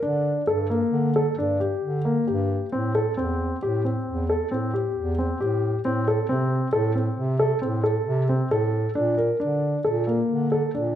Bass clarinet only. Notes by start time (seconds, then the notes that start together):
0.00 D3
0.46 G2
0.91 D3
1.37 G2
1.81 D3
2.25 G2
2.70 A2
3.16 E2
3.61 A2
4.06 E2
4.50 A2
4.96 E2
5.39 A2
5.83 A2
6.28 C3
6.72 A2
7.16 C3
7.60 A2
8.05 C3
8.50 A2
8.94 A#2
9.39 D3
9.84 A#2
10.29 D3
10.73 A#2